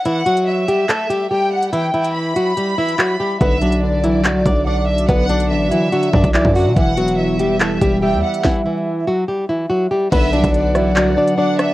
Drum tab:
CC |----------------|----------------|----------------|----------------|
HH |x-xx--x-x-x----x|x-xx--x-x--x----|x-xx--x-x-x----x|x-xx--x-xx-x--o-|
CP |--------x-------|------------x---|--------x-------|------------x---|
SD |----------------|----------------|----------------|----------------|
BD |----------------|----------------|o---------o-----|o---------oo-o--|

CC |----------------|----------------|x---------------|
HH |x-xx--x-x-x----x|----------------|x-xxx-x----x--x-|
CP |--------x-------|----------------|--------x-------|
SD |----------------|o---------------|------r-------r-|
BD |o---------o-----|o---------------|o--o------------|